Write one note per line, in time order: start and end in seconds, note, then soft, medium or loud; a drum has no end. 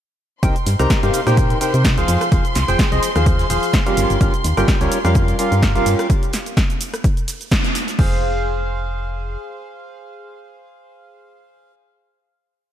0.43 0.52 C2 loud
0.43 0.55 C3 medium
0.43 0.55 D#4 medium
0.43 0.55 G4 medium
0.43 0.55 A#4 medium
0.43 0.55 C5 medium
0.43 0.55 G5 loud
0.43 6.11 C6 medium
0.43 kick loud
0.43 closed hi-hat medium
0.43 shaker soft
0.56 closed hi-hat soft
0.56 shaker soft
0.66 0.75 G2 loud
0.66 snare soft
0.66 closed hi-hat medium
0.66 open hi-hat loud
0.66 shaker medium
0.79 0.87 C2 medium
0.79 1.00 C3 medium
0.79 1.00 D#4 medium
0.79 1.00 G4 medium
0.79 1.00 A#4 medium
0.79 1.00 C5 medium
0.79 1.00 A#5 loud
0.79 cross-stick medium
0.79 closed hi-hat soft
0.79 shaker soft
0.90 kick loud
0.90 snare loud
0.90 closed hi-hat medium
0.90 closed hi-hat loud
0.90 shaker soft
1.03 1.10 G2 loud
1.03 1.21 C3 medium
1.03 1.21 D#4 medium
1.03 1.21 G4 medium
1.03 1.21 A#4 medium
1.03 1.21 C5 medium
1.03 1.21 F5 loud
1.03 closed hi-hat soft
1.03 shaker soft
1.13 closed hi-hat medium
1.13 open hi-hat loud
1.13 shaker medium
1.27 1.56 A#2 loud
1.27 1.58 C3 medium
1.27 1.58 D#4 medium
1.27 1.58 G4 medium
1.27 1.58 A#4 medium
1.27 1.58 C5 medium
1.27 1.58 G5 loud
1.27 cross-stick medium
1.27 snare soft
1.27 closed hi-hat soft
1.27 shaker soft
1.37 kick loud
1.37 closed hi-hat medium
1.37 shaker soft
1.50 closed hi-hat soft
1.50 shaker soft
1.61 1.94 C3 medium
1.61 1.94 D#4 medium
1.61 1.94 G4 medium
1.61 1.94 A#4 medium
1.61 1.94 C5 medium
1.61 1.94 G5 medium
1.61 closed hi-hat medium
1.61 open hi-hat loud
1.61 shaker medium
1.74 1.99 C3 loud
1.74 closed hi-hat soft
1.74 shaker soft
1.84 kick loud
1.84 snare loud
1.84 closed hi-hat medium
1.84 shaker soft
1.98 2.05 C2 loud
1.98 2.29 F3 loud
1.98 2.29 G#4 medium
1.98 2.29 C5 medium
1.98 2.29 F5 loud
1.98 closed hi-hat soft
1.98 shaker soft
2.08 2.17 F2 medium
2.08 closed hi-hat medium
2.08 open hi-hat loud
2.08 shaker medium
2.21 cross-stick medium
2.21 closed hi-hat soft
2.21 shaker soft
2.32 2.41 F1 loud
2.32 2.44 F3 medium
2.32 2.44 G#4 medium
2.32 2.44 C5 medium
2.32 2.44 F5 loud
2.32 kick loud
2.32 closed hi-hat medium
2.32 shaker soft
2.45 closed hi-hat soft
2.45 shaker soft
2.55 2.64 C2 loud
2.55 snare medium
2.55 closed hi-hat medium
2.55 open hi-hat loud
2.55 shaker medium
2.68 2.76 F1 medium
2.68 2.89 F3 medium
2.68 2.89 G#4 medium
2.68 2.89 C5 medium
2.68 2.89 G5 loud
2.68 closed hi-hat soft
2.68 shaker soft
2.79 kick loud
2.79 snare loud
2.79 closed hi-hat medium
2.79 shaker soft
2.92 2.99 C2 loud
2.92 3.09 F3 medium
2.92 3.09 G#4 medium
2.92 3.09 C5 medium
2.92 3.09 D#5 loud
2.92 closed hi-hat soft
2.92 shaker soft
3.03 closed hi-hat medium
3.03 open hi-hat loud
3.03 shaker medium
3.16 3.45 D#2 loud
3.16 3.47 F3 loud
3.16 3.47 G#4 medium
3.16 3.47 C5 medium
3.16 3.47 F5 loud
3.16 cross-stick medium
3.16 closed hi-hat soft
3.16 shaker soft
3.26 kick loud
3.26 closed hi-hat medium
3.26 shaker soft
3.39 snare medium
3.39 closed hi-hat soft
3.39 shaker soft
3.50 3.59 D#1 medium
3.50 3.83 F3 medium
3.50 3.83 G#4 medium
3.50 3.83 C5 medium
3.50 3.83 F5 medium
3.50 snare soft
3.50 open hi-hat medium
3.50 open hi-hat loud
3.50 shaker medium
3.63 closed hi-hat soft
3.63 shaker soft
3.73 kick loud
3.73 snare loud
3.73 closed hi-hat medium
3.73 shaker soft
3.86 4.18 G3 loud
3.86 4.18 C#4 medium
3.86 4.18 F4 medium
3.86 4.18 G4 medium
3.86 4.18 A#4 medium
3.86 4.18 F5 loud
3.86 closed hi-hat soft
3.86 shaker soft
3.97 4.06 G1 loud
3.97 closed hi-hat medium
3.97 open hi-hat loud
3.97 shaker medium
4.10 4.18 G1 medium
4.10 closed hi-hat soft
4.10 shaker soft
4.21 4.30 G1 loud
4.21 4.33 G3 medium
4.21 4.33 C#4 medium
4.21 4.33 F4 medium
4.21 4.33 G4 medium
4.21 4.33 A#4 medium
4.21 4.33 F5 loud
4.21 kick loud
4.21 closed hi-hat medium
4.21 shaker soft
4.34 closed hi-hat soft
4.34 shaker soft
4.44 4.53 D#2 loud
4.44 snare soft
4.44 closed hi-hat medium
4.44 open hi-hat loud
4.44 shaker medium
4.57 4.65 G1 medium
4.57 4.78 G3 medium
4.57 4.78 C#4 medium
4.57 4.78 F4 medium
4.57 4.78 G4 medium
4.57 4.78 A#4 medium
4.57 4.78 G5 loud
4.57 cross-stick medium
4.57 closed hi-hat soft
4.57 shaker soft
4.68 kick loud
4.68 snare loud
4.68 closed hi-hat medium
4.68 shaker soft
4.81 4.88 C#2 loud
4.81 4.98 G3 medium
4.81 4.98 C#4 medium
4.81 4.98 F4 medium
4.81 4.98 G4 medium
4.81 4.98 A#4 medium
4.81 4.98 C#5 loud
4.81 closed hi-hat soft
4.81 shaker soft
4.92 closed hi-hat medium
4.92 open hi-hat loud
4.92 shaker medium
5.05 5.34 F2 loud
5.05 5.36 G3 loud
5.05 5.36 C#4 medium
5.05 5.36 F4 medium
5.05 5.36 G4 medium
5.05 5.36 A#4 medium
5.05 5.36 F5 loud
5.05 cross-stick medium
5.05 snare soft
5.05 closed hi-hat soft
5.05 shaker soft
5.15 kick loud
5.15 closed hi-hat medium
5.15 shaker soft
5.28 closed hi-hat soft
5.28 shaker soft
5.39 5.72 G3 medium
5.39 5.72 C#4 medium
5.39 5.72 F4 medium
5.39 5.72 G4 medium
5.39 5.72 A#4 medium
5.39 5.72 F5 medium
5.39 closed hi-hat medium
5.39 open hi-hat loud
5.39 shaker medium
5.52 5.77 G2 loud
5.52 closed hi-hat soft
5.52 shaker soft
5.62 kick loud
5.62 snare loud
5.62 closed hi-hat medium
5.62 shaker soft
5.75 5.83 G1 loud
5.75 6.07 G3 loud
5.75 6.07 C#4 medium
5.75 6.07 F4 medium
5.75 6.07 G4 medium
5.75 6.07 A#4 medium
5.75 6.07 F5 loud
5.75 closed hi-hat soft
5.75 shaker soft
5.86 5.95 G2 medium
5.86 closed hi-hat medium
5.86 open hi-hat loud
5.86 shaker medium
5.99 cross-stick medium
5.99 closed hi-hat soft
5.99 shaker soft
6.10 kick loud
6.10 closed hi-hat medium
6.10 shaker soft
6.23 closed hi-hat soft
6.23 shaker soft
6.33 snare medium
6.33 closed hi-hat medium
6.33 open hi-hat loud
6.33 shaker medium
6.46 closed hi-hat soft
6.46 shaker soft
6.57 kick loud
6.57 snare loud
6.57 closed hi-hat medium
6.57 shaker soft
6.70 closed hi-hat soft
6.70 shaker soft
6.81 closed hi-hat medium
6.81 open hi-hat loud
6.81 shaker medium
6.94 cross-stick medium
6.94 closed hi-hat soft
6.94 shaker soft
7.04 kick loud
7.04 closed hi-hat medium
7.04 closed hi-hat loud
7.04 shaker soft
7.17 closed hi-hat soft
7.17 shaker soft
7.28 snare soft
7.28 open hi-hat loud
7.28 open hi-hat medium
7.28 shaker medium
7.41 closed hi-hat soft
7.41 shaker soft
7.51 kick loud
7.51 snare loud
7.51 closed hi-hat medium
7.51 shaker soft
7.64 snare loud
7.64 closed hi-hat medium
7.64 closed hi-hat soft
7.64 shaker soft
7.75 snare loud
7.75 closed hi-hat medium
7.75 open hi-hat loud
7.75 shaker medium
7.88 snare loud
7.88 closed hi-hat medium
7.88 closed hi-hat soft
7.88 shaker soft
7.99 9.37 F1 loud
7.99 11.72 G#4 medium
7.99 11.72 C5 medium
7.99 11.72 F5 loud
7.99 kick loud
7.99 crash medium